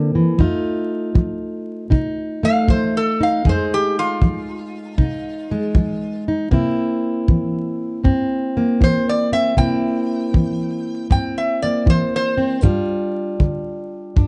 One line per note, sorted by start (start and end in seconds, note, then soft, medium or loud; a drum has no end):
0.00 0.14 D3 medium
0.00 0.36 A#3 medium
0.00 0.40 C4 medium
0.00 0.40 E4 medium
0.15 0.39 E3 medium
0.38 1.10 F2 medium
0.38 2.42 A3 medium
0.38 1.90 D#4 medium
0.38 3.43 F4 medium
0.38 kick medium
1.15 1.87 F3 medium
1.15 kick medium
1.90 2.63 C3 medium
1.90 3.19 D#4 medium
1.90 kick medium
2.43 3.42 A3 medium
2.43 2.69 F5 medium
2.68 3.40 F3 medium
2.68 2.94 C5 medium
2.68 kick medium
2.97 3.20 A4 medium
3.21 3.42 D#4 medium
3.21 3.46 F5 medium
3.45 4.17 F2 medium
3.45 5.50 G#3 medium
3.45 4.97 D#4 medium
3.45 6.49 G#4 medium
3.45 kick medium
3.49 3.72 C5 medium
3.74 3.97 G4 medium
3.99 6.23 F4 medium
4.22 4.93 F3 medium
4.22 kick medium
4.98 5.70 C3 medium
4.98 6.27 D#4 medium
4.98 kick medium
5.51 6.49 G#3 medium
5.75 6.47 F3 medium
5.75 kick medium
6.28 6.49 D#4 medium
6.51 7.23 C3 medium
6.51 8.56 A#3 medium
6.51 8.04 C4 medium
6.51 9.58 E4 medium
6.51 kick medium
7.28 8.00 E3 medium
7.28 kick medium
8.03 8.76 G2 medium
8.03 9.31 C4 medium
8.03 kick medium
8.57 9.55 A#3 medium
8.81 9.52 E3 medium
8.81 9.07 C5 medium
8.81 kick medium
9.09 9.33 D5 medium
9.32 9.54 C4 medium
9.32 9.57 E5 medium
9.57 10.29 C3 medium
9.57 11.62 A#3 medium
9.57 11.09 C4 medium
9.57 12.64 E4 medium
9.57 11.07 G5 medium
9.57 kick medium
10.34 11.06 E3 medium
10.34 kick medium
11.10 11.82 G2 medium
11.10 12.36 C4 medium
11.10 11.36 G5 medium
11.10 kick medium
11.38 11.62 E5 medium
11.63 12.61 A#3 medium
11.63 11.87 D5 medium
11.86 12.58 E3 medium
11.86 12.13 C5 medium
11.86 kick medium
12.16 12.64 C5 medium
12.37 12.60 C4 medium
12.62 13.35 G2 medium
12.62 14.27 G3 medium
12.62 14.16 D4 medium
12.62 14.27 F4 medium
12.62 kick medium
13.40 14.12 D3 medium
13.40 kick medium
14.16 14.27 G2 medium
14.16 14.27 D4 medium
14.16 kick medium